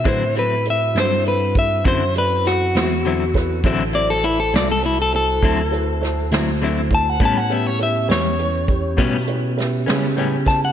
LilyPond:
<<
  \new Staff \with { instrumentName = "Clean electric guitar" } { \time 12/8 \key d \major \tempo 4. = 67 c''8 b'8 e''8 c''8 b'8 e''8 c''8 b'8 fis'2 | r8 d''16 a'16 e'16 a'16 d''16 a'16 e'16 a'16 a'2 r4 a''16 fis''16 | a''16 fis''16 e''16 cis''16 e''8 cis''2 r2 a''16 fis''16 | }
  \new Staff \with { instrumentName = "Grand piano" } { \time 12/8 \key d \major <e' fis' a' b'>8 <e' fis' a' c''>8 <e' fis' a' c''>8 <e' fis' a' c''>8 <e' fis' a' c''>8 <e' fis' a' c''>8 <e' fis' a' c''>8 <e' fis' a' d''>8 <e' fis' a' c''>8 <e' fis' a' c''>8 <e' fis' a' c''>8 <e' fis' a' b'>8 | <e' fis' a' c''>8 <e' fis' a' c''>8 <e' fis' a' b'>8 <e' fis' a' c''>8 <e' fis' a' c''>8 <e' fis' a' c''>8 <e' fis' a' c''>8 <e' fis' a' b'>8 <e' fis' a' c''>8 <e' fis' a' c''>8 <e' fis' a' c''>8 <e' fis' a' c''>8 | <e' g' b' cis''>8 <e' g' b' e''>8 <e' g' b' cis''>8 <e' g' b' cis''>8 <e' g' b' cis''>8 <e' g' b' cis''>8 <e' g' b' e''>8 <e' g' b' cis''>8 <e' g' b' e''>8 <e' g' b' cis''>8 <e' g' b' cis''>8 <e' g' b' cis''>8 | }
  \new Staff \with { instrumentName = "Tonewheel organ" } { \time 12/8 \key d \major <c' e' fis'>1. | <e' fis' c''>1. | <b cis' g'>1. | }
  \new Staff \with { instrumentName = "Clean electric guitar" } { \time 12/8 \key d \major <d fis c' e'>8 <fis c' e'>8 r8 <fis c' e'>8 r4 <d fis c' e'>8 r4 <fis c' e'>8 <d fis c' e'>8 r8 | <d fis c' e'>8 <fis c' e'>8 r8 <fis c' e'>8 r4 <d fis c' e'>8 r4 <fis c' e'>8 <d fis c' e'>8 r8 | <a, g b cis'>8 <g b cis'>8 r8 <g b cis'>8 r4 <a, g b cis'>8 r4 <g b cis'>8 <a, g b cis'>8 r8 | }
  \new Staff \with { instrumentName = "Tine electric piano" } { \clef bass \time 12/8 \key d \major a,4. g,4. fis,4. e,4. | a,,4. c,4. d,4. d,4. | a,4. e,4. b,4. cis4. | }
  \new DrumStaff \with { instrumentName = "Drums" } \drummode { \time 12/8 <hh bd>8 hh8 hh8 <hh sn>8 hh8 <hh bd>8 <hh bd>8 hh8 <hh sn>8 <hh sn>8 hh8 <hh bd sn>8 | <hh bd>8 hh8 hh8 <hh sn>8 hh8 hh8 <hh bd>8 hh8 <hh sn>8 <hh sn>8 hh8 <hh bd>8 | <hh bd>8 hh8 hh8 <hh sn>8 hh8 <hh bd>8 <hh bd>8 hh8 <hh sn>8 <hh sn>8 hh8 <hh bd sn>8 | }
>>